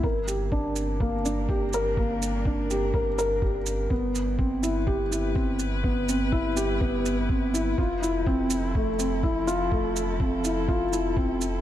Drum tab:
SH |-x-x-x-x|-x-x-x-x|-x-x-x-x|-x-x-x-x|
BD |o-o-o-o-|o-o-o-o-|o-o-o-o-|o-o-o-o-|

SH |-x-x-x-x|-x-x-x-x|
BD |o-o-o-o-|o-o-o-o-|